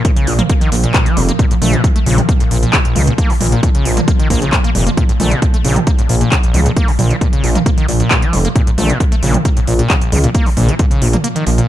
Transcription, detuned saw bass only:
0.27 A#1
0.72 A#1
1.17 F1
1.62 A#1
2.06 A#1
2.51 A#1
2.96 C#2
3.41 A#1
3.85 A#1
4.30 A#1
4.75 F1
5.20 A#1
5.65 A#1
6.09 A#1
6.54 C#2
6.99 A#1
7.44 A#1
7.88 A#1
8.33 F1
8.78 A#1
9.23 A#1
9.67 A#1
10.12 C#2
10.57 A#1
11.02 A#1
11.47 A#1

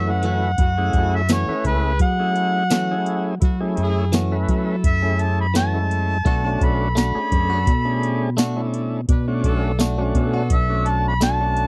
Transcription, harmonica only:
Already playing: E5
0.09 F#5
1.16 E5
1.32 C#5
1.67 B4
2.02 F#5
4.86 E5
5.21 A5
5.41 B5
5.57 A5
6.64 B5
6.98 B5
10.52 E5
10.88 A5
11.08 B5
11.23 A5

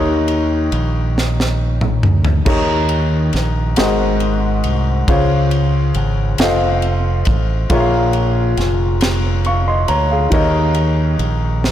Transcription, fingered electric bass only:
Already playing: D#2
0.72 A#1
2.03 D2
2.46 D#2
3.34 A#1
3.78 G#1
4.65 C2
5.08 C#2
5.95 G#1
6.39 F1
7.27 A1
7.70 A#1
8.57 F1
9.89 D2
10.32 D#2
11.19 A#1

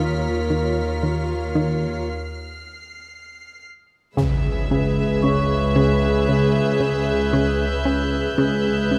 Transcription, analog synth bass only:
Already playing: D#3
0.50 D#3
1.03 D#3
1.55 D#3
4.17 C#3
4.71 C#3
5.24 C#3
5.76 C#3
6.29 C#3
6.80 C#3
7.33 C#3
7.85 C#4
8.38 C#3
8.91 C#3

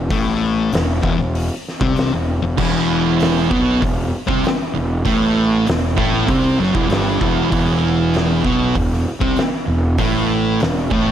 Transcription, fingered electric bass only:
0.11 A1
0.72 E1
1.03 E1
1.18 E1
1.81 C2
2.11 E1
2.42 E1
2.58 E1
3.52 B1
3.82 E1
4.29 C2
4.74 E1
5.06 A1
5.67 E1
5.98 A1
6.28 C2
6.58 F#1
6.75 E1
6.91 G1
7.21 E1
7.52 E1
8.45 B1
8.75 E1
9.21 C2
9.68 E1
9.99 A1
10.61 E1
10.92 A1

